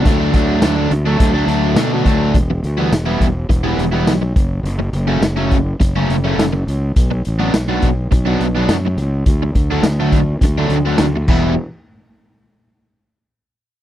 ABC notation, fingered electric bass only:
X:1
M:4/4
L:1/8
Q:1/4=104
K:Edor
V:1 name="Fingered electric bass" clef=bass
D,, D,, D,, D,, D,, D,, B,, D,, | E,,, D,, E,,, E,,, E,,, E,,, B,,, F,,, | F,,, F,,, F,,,2 F,,, F,,, F,,, C,, | B,,, A,,, B,,, B,,, B,,, B,,, F,, C,, |
D,, D,, D,,2 D,, D,, D,, E,,, | z8 |]